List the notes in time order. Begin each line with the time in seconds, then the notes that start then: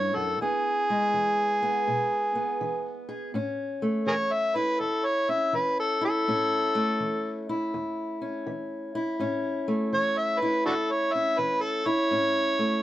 Already playing: G2 A3 C#4 E4 C#5
0.15 F#2 A4
0.41 E2 B3 G#4
0.90 G#3
1.14 E3
1.63 B3
1.87 B2
2.35 B3
2.61 E3
3.09 G#4
3.34 A2 C#4
3.82 A3
4.06 E3 G#4 A#4 C#5
4.33 E5
4.55 E4 B4
4.80 E2 A4
5.06 C#5
5.29 C#4 E5
5.53 E3 B4
5.80 A4
6.01 E4 A4
6.28 A2 C#4
6.75 A3
7.00 E3
7.49 E4
7.74 E2
8.22 C#4
8.47 E3
8.95 E4
9.20 A2 C#4
9.68 A3
9.93 E3 C#5
10.18 E5
10.40 E4 B4
10.66 E2 D4 F#4 A4
10.91 C#5
11.13 C#4 E5
11.39 E3 B4
11.61 A4
11.86 E4 C#5
12.11 A2 C#4
12.59 A3